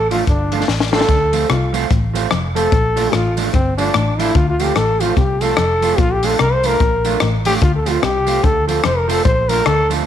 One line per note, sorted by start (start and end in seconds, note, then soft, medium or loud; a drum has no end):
0.00 0.22 A1 medium
0.11 0.22 F3 medium
0.11 0.22 A3 medium
0.11 0.22 D4 medium
0.11 0.26 F4 loud
0.11 0.22 F4 medium
0.11 open hi-hat medium
0.27 0.62 G1 loud
0.27 0.65 D4 loud
0.27 kick loud
0.27 hi-hat pedal medium
0.52 0.62 F3 medium
0.52 0.63 A3 medium
0.52 0.63 D4 medium
0.52 0.63 F4 medium
0.52 open hi-hat medium
0.68 1.03 A1 medium
0.68 snare medium
0.80 snare medium
0.92 1.03 F3 medium
0.92 1.03 A3 medium
0.92 1.03 D4 medium
0.92 1.04 F4 loud
0.92 1.52 A4 loud
0.92 snare loud
1.01 snare loud
1.08 1.44 D2 loud
1.08 1.23 D3 loud
1.08 kick loud
1.08 hi-hat pedal medium
1.33 1.44 F3 loud
1.33 1.44 A3 loud
1.33 1.44 C4 medium
1.33 1.44 F4 loud
1.33 open hi-hat medium
1.33 tambourine medium
1.50 1.84 C2 medium
1.50 1.64 C3 medium
1.50 1.74 F4 loud
1.50 cross-stick loud
1.50 hi-hat pedal medium
1.73 1.84 F3 loud
1.73 1.85 A3 medium
1.73 1.85 C4 medium
1.73 1.85 F4 loud
1.73 open hi-hat medium
1.73 tambourine medium
1.90 2.25 A1 loud
1.90 2.05 A2 medium
1.90 kick loud
1.90 hi-hat pedal medium
2.14 2.25 F3 medium
2.14 2.26 A3 medium
2.14 2.26 C4 medium
2.14 2.26 F4 medium
2.14 open hi-hat medium
2.14 tambourine medium
2.31 2.67 F1 medium
2.31 2.46 F2 medium
2.31 cross-stick loud
2.31 hi-hat pedal medium
2.55 2.66 F3 loud
2.55 2.67 A3 loud
2.55 2.67 C4 medium
2.55 2.67 F4 loud
2.55 3.15 A4 loud
2.55 open hi-hat loud
2.55 tambourine medium
2.72 3.07 A#1 loud
2.72 2.87 A#2 loud
2.72 kick loud
2.72 hi-hat pedal medium
2.96 3.07 F3 medium
2.96 3.08 A3 loud
2.96 3.08 D4 loud
2.96 3.08 F4 loud
2.96 open hi-hat medium
2.96 tambourine medium
3.12 3.48 A1 medium
3.12 3.27 A2 medium
3.12 3.38 F4 loud
3.12 cross-stick loud
3.12 hi-hat pedal medium
3.37 3.48 F3 medium
3.37 3.48 A3 medium
3.37 3.48 D4 medium
3.37 3.49 F4 medium
3.37 open hi-hat medium
3.37 tambourine medium
3.54 3.89 G1 loud
3.54 3.68 G2 medium
3.54 3.77 C4 loud
3.54 kick loud
3.54 hi-hat pedal medium
3.78 3.89 F3 medium
3.78 3.89 A3 medium
3.78 4.21 D4 loud
3.78 3.90 D4 medium
3.78 3.90 F4 medium
3.78 open hi-hat medium
3.78 tambourine medium
3.94 4.30 A1 medium
3.94 4.10 A2 medium
3.94 cross-stick loud
3.94 hi-hat pedal medium
4.19 4.30 F3 medium
4.19 4.30 A3 loud
4.19 4.30 D4 loud
4.19 4.37 E4 loud
4.19 4.30 F4 loud
4.19 open hi-hat medium
4.19 tambourine medium
4.35 4.70 D2 loud
4.35 4.50 D3 loud
4.35 4.49 F4 loud
4.35 kick loud
4.35 hi-hat pedal medium
4.50 4.64 F4 loud
4.59 4.71 F3 loud
4.59 4.71 A3 loud
4.59 4.71 C4 loud
4.59 4.72 F4 loud
4.59 4.78 G4 loud
4.59 open hi-hat medium
4.59 tambourine medium
4.76 5.11 A1 medium
4.76 4.91 A2 medium
4.76 5.02 A4 loud
4.76 cross-stick medium
4.76 hi-hat pedal medium
5.00 5.11 F3 medium
5.00 5.12 A3 medium
5.00 5.12 C4 medium
5.00 5.16 F4 loud
5.00 5.12 F4 medium
5.00 open hi-hat medium
5.00 tambourine medium
5.16 5.52 C2 loud
5.16 5.32 C3 medium
5.16 5.44 G4 loud
5.16 kick loud
5.16 hi-hat pedal medium
5.41 5.52 F3 medium
5.41 5.53 A3 medium
5.41 5.53 C4 loud
5.41 5.53 F4 loud
5.41 6.00 A4 loud
5.41 open hi-hat medium
5.41 tambourine medium
5.57 5.93 F1 medium
5.57 5.73 F2 medium
5.57 cross-stick loud
5.57 hi-hat pedal medium
5.82 5.93 F3 medium
5.82 5.93 A3 medium
5.82 5.94 C4 medium
5.82 5.94 F4 loud
5.82 open hi-hat medium
5.82 tambourine medium
5.98 6.34 A#1 loud
5.98 6.13 A#2 loud
5.98 6.14 F4 loud
5.98 kick loud
5.98 hi-hat pedal medium
6.13 6.28 G4 loud
6.23 6.34 F3 medium
6.23 6.34 A3 medium
6.23 6.35 D4 medium
6.23 6.35 F4 loud
6.23 open hi-hat loud
6.23 tambourine medium
6.27 6.42 A4 loud
6.39 6.75 C2 medium
6.39 6.54 C3 medium
6.39 6.55 A#4 loud
6.39 cross-stick medium
6.39 hi-hat pedal medium
6.53 6.68 C5 loud
6.63 6.75 F3 medium
6.63 6.75 A3 medium
6.63 6.76 D4 medium
6.63 6.76 F4 medium
6.63 7.29 A#4 loud
6.63 open hi-hat medium
6.63 tambourine medium
6.80 7.15 A#1 medium
6.80 6.96 A#2 medium
6.80 kick loud
6.80 hi-hat pedal medium
7.05 7.16 F3 medium
7.05 7.16 A3 medium
7.05 7.16 D4 medium
7.05 7.16 F4 medium
7.05 open hi-hat medium
7.05 tambourine medium
7.20 7.56 A1 medium
7.20 7.37 A2 medium
7.20 cross-stick loud
7.20 hi-hat pedal medium
7.45 7.56 F3 medium
7.45 7.57 A3 medium
7.45 7.57 D4 loud
7.45 7.57 F4 medium
7.45 7.53 G4 loud
7.45 open hi-hat medium
7.45 open hi-hat loud
7.45 tambourine medium
7.62 7.97 D2 loud
7.62 7.77 D3 medium
7.62 7.75 F4 loud
7.62 kick loud
7.62 hi-hat pedal medium
7.76 7.92 A4 loud
7.86 7.97 F3 medium
7.86 7.97 A3 loud
7.86 7.98 C4 loud
7.86 7.98 F4 loud
7.86 open hi-hat medium
7.86 tambourine medium
7.91 8.05 F4 loud
8.02 8.38 C2 medium
8.02 8.17 C3 medium
8.02 8.46 G4 loud
8.02 cross-stick loud
8.02 hi-hat pedal medium
8.26 8.38 F3 medium
8.26 8.38 A3 medium
8.26 8.38 C4 medium
8.26 8.38 F4 loud
8.26 open hi-hat medium
8.26 tambourine medium
8.44 8.79 D2 medium
8.44 8.58 D3 medium
8.44 8.68 A4 loud
8.44 kick loud
8.44 hi-hat pedal medium
8.68 8.79 F3 medium
8.68 8.79 A3 medium
8.68 8.79 C4 medium
8.68 8.79 F4 loud
8.68 8.86 A4 medium
8.68 open hi-hat medium
8.68 tambourine medium
8.84 9.20 F1 medium
8.84 9.00 F2 medium
8.84 8.99 C5 loud
8.84 cross-stick loud
8.84 hi-hat pedal medium
8.98 9.13 A#4 loud
9.08 9.19 F3 medium
9.08 9.20 A3 loud
9.08 9.20 C4 loud
9.08 9.20 F4 loud
9.08 9.24 A4 loud
9.08 open hi-hat loud
9.08 tambourine medium
9.25 9.60 A#1 loud
9.25 9.40 A#2 loud
9.25 9.50 C5 loud
9.25 kick loud
9.25 hi-hat pedal medium
9.49 9.60 F3 medium
9.49 9.61 A3 loud
9.49 9.61 D4 loud
9.49 9.61 F4 loud
9.49 9.67 A#4 loud
9.49 open hi-hat loud
9.49 tambourine medium
9.66 10.01 D2 medium
9.66 9.81 D3 medium
9.66 9.90 A4 loud
9.66 cross-stick loud
9.66 hi-hat pedal medium
9.90 10.01 F3 medium
9.90 10.02 A3 loud
9.90 10.02 D4 medium
9.90 10.02 F4 medium
9.90 open hi-hat medium
9.90 tambourine medium